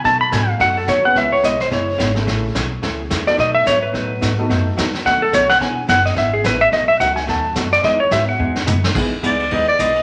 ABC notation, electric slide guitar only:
X:1
M:4/4
L:1/16
Q:"Swing" 1/4=216
K:E
V:1 name="Electric slide guitar"
a2 b2 g2 =f2 ^f2 A2 c2 f2 | e2 c2 d2 =c2 ^c8 | z12 z2 =d2 | d2 e2 c2 B8- B2 |
z8 f2 A2 c2 f2 | g4 f2 d2 e2 G2 B2 e2 | d2 e2 f2 g2 a4 z2 =d2 | d2 c2 e2 f8- f z |
z16 |]